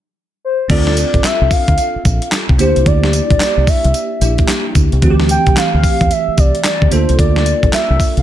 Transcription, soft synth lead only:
0.45 0.69 C5 medium
0.71 0.95 D5 loud
0.98 1.26 D5 medium
1.25 1.52 E5 loud
1.52 2.29 F5 loud
2.60 2.88 C5 medium
2.87 3.14 D5 loud
3.14 3.70 D5 loud
3.69 4.49 E5 loud
5.31 5.59 G5 loud
5.58 6.13 F5 loud
6.12 6.41 E5 loud
6.39 6.65 D5 loud
6.66 6.90 D5 loud
6.93 7.17 C5 medium
7.19 7.69 D5 loud
7.74 8.14 E5 loud
8.19 8.22 F5 loud

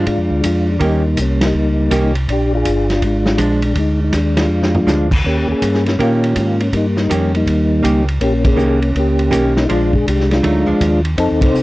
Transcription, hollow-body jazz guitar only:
0.79 1.01 D#3 medium
0.79 1.02 A#3 medium
0.79 1.02 C#4 medium
0.79 1.02 G4 medium
1.91 2.12 D#3 medium
1.91 2.13 A#3 medium
1.91 2.13 C#4 medium
1.91 2.13 G4 medium
3.38 3.60 F3 medium
3.38 3.60 G#3 medium
3.38 3.61 D4 medium
4.87 5.08 F3 medium
4.87 5.09 G#3 medium
4.87 5.09 D4 medium
5.99 6.54 D#3 medium
5.99 6.55 A#3 medium
5.99 6.55 C#4 medium
5.99 6.55 G4 medium
7.10 7.31 D#3 medium
7.10 7.31 A#3 medium
7.10 7.31 C#4 medium
7.10 7.31 G4 medium
7.83 8.04 D#3 medium
7.83 8.05 A#3 medium
7.83 8.05 C#4 medium
7.83 8.05 G4 medium
8.57 8.78 D#3 soft
8.57 8.78 A#3 medium
8.57 8.79 C#4 medium
8.57 8.79 G4 medium
9.31 9.52 D#3 medium
9.31 9.53 A#3 medium
9.31 9.53 C#4 medium
9.31 9.53 G4 medium
9.69 9.90 F3 medium
9.69 9.91 G#3 medium
9.69 9.91 D4 medium
10.43 10.64 F#3 medium
10.43 10.65 A3 medium
10.43 10.65 D#4 medium
10.66 10.98 F3 medium
10.66 10.99 G#3 medium
10.66 10.99 D4 medium

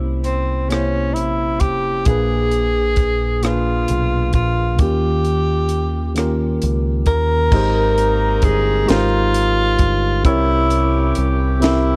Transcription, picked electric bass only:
0.00 1.17 C2 medium
1.17 1.62 A#1 medium
1.62 2.03 F1 medium
2.07 3.85 A#1 medium
3.90 4.31 B1 medium
4.35 4.80 A#1 medium
4.80 6.57 D#2 medium
6.63 7.04 C#2 medium
7.07 7.49 D#2 medium
7.53 8.39 G#1 medium
8.44 8.85 G1 medium
8.90 9.76 G#1 medium
9.80 10.21 G1 medium
10.26 11.12 C2 loud
11.18 11.96 C2 medium

